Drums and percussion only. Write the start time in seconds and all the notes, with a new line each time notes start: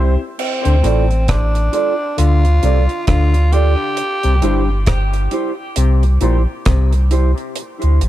0.39 crash
0.65 closed hi-hat
0.84 closed hi-hat
1.11 closed hi-hat
1.28 kick, cross-stick, closed hi-hat
1.55 closed hi-hat
1.73 closed hi-hat
2.18 closed hi-hat
2.45 closed hi-hat
2.63 closed hi-hat
2.89 closed hi-hat
3.07 kick, cross-stick, closed hi-hat
3.34 closed hi-hat
3.53 closed hi-hat
3.97 closed hi-hat
4.23 closed hi-hat
4.42 closed hi-hat
4.86 kick, cross-stick, closed hi-hat
5.13 closed hi-hat
5.31 closed hi-hat
5.76 closed hi-hat
6.03 closed hi-hat
6.21 closed hi-hat
6.65 kick, cross-stick, closed hi-hat
6.92 closed hi-hat
7.11 closed hi-hat
7.38 closed hi-hat
7.56 closed hi-hat
7.82 closed hi-hat
8.01 closed hi-hat